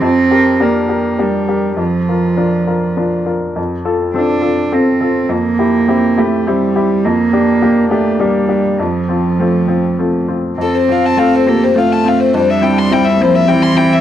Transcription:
<<
  \new Staff \with { instrumentName = "Violin" } { \time 3/4 \key f \major \tempo 4 = 103 r2. | r2. | r2. | r2. |
r2. | r2. | a'16 c''16 f''16 a''16 f''16 c''16 a'16 c''16 f''16 a''16 f''16 c''16 | c''16 e''16 g''16 c'''16 g''16 e''16 c''16 e''16 g''16 c'''16 g''16 e''16 | }
  \new Staff \with { instrumentName = "Grand piano" } { \time 3/4 \key f \major f,8 <g' bes'>8 <d' g' bes'>8 <g' bes'>8 <d' g' bes'>8 <g' bes'>8 | f,8 <f' bes'>8 <d' f' bes'>8 <f' bes'>8 <d' f' bes'>8 <f' bes'>8 | f,8 <f' a'>8 <c' f' a'>8 <f' a'>8 <c' f' a'>8 <f' a'>8 | f,8 <e' g'>8 <c' e' g'>8 <e' g'>8 <c' e' g'>8 <e' g'>8 |
f,8 <d' g'>8 <bes d' g'>8 <d' g'>8 <bes d' g'>8 <d' g'>8 | f,8 <c' f'>8 <a c' f'>8 <c' f'>8 <a c' f'>8 <c' f'>8 | f,8 <c' f'>8 <a c' f'>8 <c' f'>8 <a c' f'>8 <c' f'>8 | f,8 <c' e'>8 <g c' e'>8 <c' e'>8 <g c' e'>8 <c' e'>8 | }
  \new Staff \with { instrumentName = "Viola" } { \time 3/4 \key f \major r2. | r2. | r2. | r2. |
r2. | r2. | r4 a'8 g'8 f'8 c'8 | d'4 c'8 bes8 c'4 | }
  \new Staff \with { instrumentName = "Cello" } { \time 3/4 \key f \major c'4 bes4 g4 | f2~ f8 r8 | r4 d'4 c'4 | bes4. a8 g4 |
bes4. a8 g4 | f2~ f8 r8 | c'4. bes8 a4 | g4. f8 e4 | }
>>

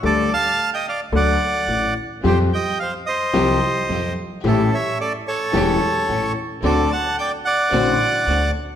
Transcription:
<<
  \new Staff \with { instrumentName = "Bandoneon" } { \time 4/4 \key d \phrygian \tempo 4 = 110 <a' d''>8 <f'' a''>8. <ees'' g''>16 <d'' f''>8 <d'' fis''>4. r8 | <g' c''>8 <ees'' g''>8 <c'' f''>8 <c'' ees''>2 r8 | <e' a'>8 <cis'' e''>8 <a' d''>8 <a' cis''>2 r8 | <a' d''>8 <fis'' a''>8 <d'' g''>8 <d'' fis''>2 r8 | }
  \new Staff \with { instrumentName = "String section" } { \time 4/4 \key d \phrygian r1 | <c' f' g'>8 r4. <c' f' g'>8 r8 <c' f' g'>8 r8 | <a cis' g'>8 r4. <a cis' g'>8 r8 <a cis' g'>8 r8 | <c' d' fis'>8 r4. <c' d' fis'>8 r8 <c' d' fis'>8 r8 | }
  \new Staff \with { instrumentName = "Grand piano" } { \clef bass \time 4/4 \key d \phrygian <d, d g a d' a'>8 r4. <d, d fis a d' a'>8 r8 <a,, a,>8 r8 | <f, f g c' g'>8 r4. <c, c f g c' g'>8 r8 <f, f>8 r8 | <a,, a, e a cis' g'>8 r4. <e,, e, e a cis' g'>8 r8 <a,, a,>8 r8 | <d, d a c' fis'>8 r4. <a,, a, d a c' fis'>8 r8 <d, d>8 r8 | }
  \new Staff \with { instrumentName = "Upright bass" } { \clef bass \time 4/4 \key d \phrygian d,8 r4. d,8 r8 a,,8 r8 | f,8 r4. c,8 r8 f,8 r8 | a,,8 r4. e,,8 r8 a,,8 r8 | d,8 r4. a,,8 r8 d,8 r8 | }
>>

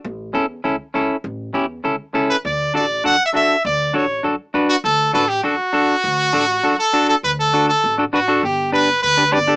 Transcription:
<<
  \new Staff \with { instrumentName = "Trumpet" } { \time 4/4 \key d \major \tempo 4 = 200 r1 | r2. r8 b'8 | d''4 d''4 \tuplet 3/2 { fis''4 e''8 } e''4 | d''4 cis''4 r4. fis'8 |
a'4 a'8 g'8 fis'2~ | fis'2~ fis'8 a'4 a'8 | b'8 a'4 a'4 r8 fis'4 | g'4 b'4 b'4 d''8. r16 | }
  \new Staff \with { instrumentName = "Clean electric guitar" } { \time 4/4 \key d \major r4 <cis' e' a'>8 r8 <cis' e' a'>8 r8 <cis' e' a'>8 r8 | r4 <cis' e' g'>8 r8 <cis' e' a'>8 r8 <cis' e' a'>8 r8 | r4 <d' fis' a'>8 r8 <d' fis' a'>8 r8 <d' fis' a'>8 r8 | r4 <d' fis' a'>8 r8 <d' fis' a'>8 r8 <d' fis' b'>8 r8 |
r4 <d' fis' b'>8 r8 <d' fis' a'>8 r8 <d' fis' a'>8 r8 | r4 <d' fis' a'>8 r8 <d' fis' a'>8 r8 <d' fis' a'>8 r8 | r4 <d' fis' a'>8 r4 <d' fis' a'>8 <d' fis' b'>8 <d' fis' a'>8 | r4 <d' g' b'>8 r4 <d' g' b'>8 <d' g' b'>8 <d' g' a'>8 | }
  \new Staff \with { instrumentName = "Upright bass" } { \clef bass \time 4/4 \key d \major a,,4 e,4 cis,8 r8 cis,8 r8 | a,,4 e,4 cis,8 r8 cis,8 r8 | d,4 a,,4 fis,8 r8 fis,8 r8 | d,4 a,,4 fis,8 r8 fis,8 r8 |
d,4 a,,4 fis,8 r8 fis,8 r8 | d,4 a,,4 fis,8 r4. | d,2 a,,4 a,,4 | g,,2 d,4 g,,4 | }
>>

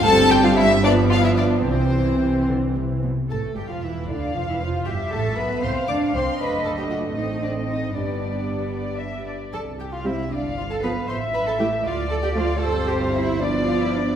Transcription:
<<
  \new Staff \with { instrumentName = "Violin section" } { \time 6/8 \key c \major \tempo 4. = 77 a''8 g''16 f''16 e''8 d''8 f''16 e''16 d''8 | c''4. r4. | a''8 g''16 f''16 e''8 d''8 f''16 e''16 f''8 | g''8 a''8 b''8 c'''8 d'''8 c'''8 |
b''8 a''16 g''16 fis''8 dis''8 d''8 dis''8 | b'2~ b'8 r8 | a''8 g''16 f''16 e''8 d''8 f''16 a''16 b''8 | c'''8 b''16 a''16 g''8 f''8 a''16 g''16 f''8 |
a''8 g''16 f''16 e''8 d''8 f''16 e''16 d''8 | }
  \new Staff \with { instrumentName = "Violin section" } { \time 6/8 \key c \major a'8 g'16 f'16 e'8 d'8 f'16 e'16 d'8 | c'4. r4. | r4. f''4. | e''4. f''4. |
dis''4. dis''4. | d''4. d''8 e''8 d''8 | r4. f''4. | e''4. d''4. |
c''4. d''4. | }
  \new Staff \with { instrumentName = "Cello section" } { \time 6/8 \key c \major g,2. | c4. d8 c8 b,8 | a'8 g'16 f'16 e'8 d'8 f'16 e'16 f'8 | g'8 a'8 b'8 c''8 d''8 c''8 |
b'8 a'16 g'16 fis'8 dis'8 d'8 dis'8 | b2~ b8 r8 | a'8 g'16 f'16 e'8 d'8 f'16 a'16 b'8 | c''8 b'16 a'16 g'8 f'8 a'16 g'16 f'8 |
a'8 g'16 f'16 e'8 d'8 f'16 e'16 d'8 | }
  \new Staff \with { instrumentName = "Viola section" } { \time 6/8 \key c \major << { c'4. b4. | c'2~ c'8 r8 | a8 g16 f16 e8 d8 f16 e16 f8 | g8 a8 b8 c'8 d'8 c'8 |
d'4. c'4. | d'2~ d'8 r8 | r4 c'16 r4 r16 b16 r16 | r4 a16 r4 r16 a16 r16 |
c'4. b4. | } \\ { g4. f4. | e2~ e8 r8 | r2. | r2. |
a2. | g2~ g8 r8 | r4 g16 r4 r16 f16 r16 | r4 e16 r4 r16 f16 r16 |
g4. f4. | } >> }
  \new Staff \with { instrumentName = "Double bass section" } { \clef bass \time 6/8 \key c \major g,,2. | c,2~ c,8 r8 | a,,8 g,,16 f,,16 e,,8 d,8 f,,16 e,,16 f,,8 | g,,8 a,,8 b,,8 c,8 d,8 c,8 |
fis,,4. a,,4. | g,,2~ g,,8 r8 | c,4. g,,4. | a,,4. d,4. |
g,,2. | }
>>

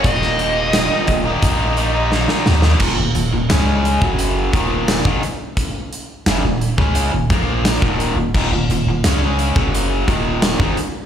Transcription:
<<
  \new Staff \with { instrumentName = "Lead electric guitar" } { \time 4/4 \key c \minor \tempo 4 = 87 ees''2. r4 | r1 | r1 | r1 | }
  \new Staff \with { instrumentName = "Overdriven electric guitar" } { \clef bass \time 4/4 \key c \minor <ees, bes, ees g bes ees'>8 <ees g bes ees'>8 <ees, bes, ees g bes ees'>16 <ees g bes ees'>8 <ees g bes ees'>8. <ees g bes ees'>16 <ees g bes ees'>16 <ees, bes, ees g bes ees'>16 <ees g bes ees'>16 <ees g bes ees'>16 <ees g bes ees'>16 | <ees, bes,>16 <ees, bes,>16 <ees, bes,>16 <ees, bes,>16 <des aes des'>8. <ges, des ges>8. <ees, bes, ees>8. <aes, ees>16 r8 | r4 <ges, des>16 <ees, bes,>8 <des aes des'>8 <ees, bes,>16 <bes, f bes>8. <ees, bes, ees>8 <ees, bes,>16 | <ees, bes,>16 <ees, bes,>16 <ees, bes,>16 <ees, bes,>16 <des aes des'>8. <ges, des ges>8. <ees, bes, ees>8. <aes, ees>16 r8 | }
  \new Staff \with { instrumentName = "Sub bass" } { \clef bass \time 4/4 \key c \minor ees,,4. ees,,8 bes,,4. ees,8 | ees,,16 ees,,16 ees,,16 ees,,16 des,8. ges,,8. ees,,8. aes,,16 r8 | r4 ges,,16 ees,,8 des,8 ees,,16 bes,,8. ees,,8 ees,,16 | ees,,16 ees,,16 ees,,16 ees,,16 des,8. ges,,8. ees,,8. aes,,16 r8 | }
  \new DrumStaff \with { instrumentName = "Drums" } \drummode { \time 4/4 <hh bd>16 sn16 hh8 <hh sn tamb>8 <hh bd>8 <hh bd>8 hh8 sn16 sn16 sn16 sn16 | <cymc bd>8 hh8 <hh sn tamb>8 hh16 bd16 hh8 <hh bd>8 <hh sn tamb>16 bd16 hh8 | <hh bd>8 hh8 <hh sn tamb>8 hh16 bd16 hh8 <hh bd>8 <hh sn tamb>16 bd16 hh8 | <cymc bd>8 hh8 <hh sn tamb>8 hh16 bd16 hh8 <hh bd>8 <hh sn tamb>16 bd16 hh8 | }
>>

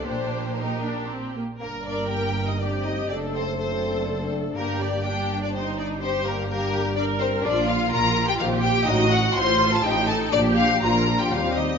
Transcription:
<<
  \new Staff \with { instrumentName = "Violin section" } { \time 3/4 \key g \minor \tempo 4 = 123 g'4 g'4. r8 | bes'8 d''8 g''8. ees''16 d''8 ees''8 | d''8 c''8 c''4. r8 | bes'8 d''8 g''8. d''16 c''8 d''8 |
c''8 bes'8 bes'4 d''8 c''8 | \key bes \major d''8 f''8 bes''8. g''16 f''8 g''8 | ees''8 fis''8 c'''8. a''16 g''8 a''8 | d''8 f''8 bes''8. g''16 f''8 ees''8 | }
  \new Staff \with { instrumentName = "Viola section" } { \time 3/4 \key g \minor <bes d'>4 ees'8 d'8 c'8 bes8 | bes'2 g'4 | a'4 a'2 | g'4 d'4 ees'4 |
g'4 g'4 bes'4 | \key bes \major f'2 g'4 | fis'4 f'4 ees'4 | g'4 f'4 g'4 | }
  \new Staff \with { instrumentName = "Violin section" } { \time 3/4 \key g \minor c''4 bes'4 r4 | bes8 d'8 g'8. ees'16 d'8 ees'8 | d'8 c'8 c'4. r8 | bes8 d'8 g'8. d'16 c'8 d'8 |
c'8 bes8 bes4 d'8 c'8 | \key bes \major d'8 f'8 bes'8. g'16 f'8 g'8 | ees'8 fis'8 c''8. a'16 g'8 a'8 | d'8 f'8 bes'8. g'16 f'8 ees'8 | }
  \new Staff \with { instrumentName = "French horn section" } { \time 3/4 \key g \minor << { r2. | d'2 c'4 | d'2.~ | d'2 ees'4 |
d'2. | \key bes \major d'8 r4. c'8 r8 | ees'8 r4. ees'8 r8 | d'4 d'4 c'4 | } \\ { r2. | bes2 a4~ | a2. | bes2 g4~ |
g2. | f8 r4. ees8 r8 | fis8 r4. f8 r8 | f4 f4 g4 | } >> }
  \new Staff \with { instrumentName = "Cello section" } { \clef bass \time 3/4 \key g \minor bes,2~ bes,8 r8 | g,2. | fis,2. | g,2.~ |
g,2. | \key bes \major bes,4 bes,4 bes,4 | a,4 a,4 a,4 | bes,4 bes,4 ees,4 | }
  \new Staff \with { instrumentName = "Double bass section" } { \clef bass \time 3/4 \key g \minor bes,,2~ bes,,8 r8 | g,,2. | fis,,2. | g,,2.~ |
g,,2. | \key bes \major bes,,4 bes,,4 bes,,4 | a,,4 a,,4 a,,4 | bes,,4 bes,,4 ees,4 | }
>>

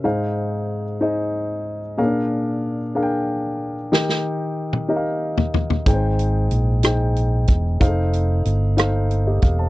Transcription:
<<
  \new Staff \with { instrumentName = "Grand piano" } { \time 6/8 \key f \minor \tempo 4. = 62 << { aes,4. r4. | bes,4. r4. | ees4. r4. | aes,4. r4. |
r2 r16 <g' ees''>16 <a' f''>16 <c'' a''>16 | } \\ { <ees' aes' c'' f''>4 r8 <ees' aes' c'' ees''>4 r8 | <des' d' aes' bes' f''>4 r8 <d' aes' bes' f'' g''>4 r8 | <ees' g' bes' g''>4 r8 <ees' g' bes' ees'' f''>4 r8 | <ees' aes' ces'' c'' g''>4 r8 <ees' aes' c'' g''>4 r8 |
<ees' aes' a' c'' f''>4 r8 <ees' a' c'' f''>4 r8 | } >> }
  \new Staff \with { instrumentName = "Fingered electric bass" } { \clef bass \time 6/8 \key f \minor r2. | r2. | r2. | aes,,4 bes,,4. fes,,8 |
f,,4 g,,4. fes,,8 | }
  \new DrumStaff \with { instrumentName = "Drums" } \drummode { \time 6/8 r4. r4. | r4. r4. | sn16 sn4 toml16 r8. tomfh16 tomfh16 tomfh16 | <hh bd>8 hh8 hh8 <hh ss>8 hh8 <hh bd>8 |
<hh bd>8 hh8 hh8 <hh ss>8 hh8 <hh bd>8 | }
>>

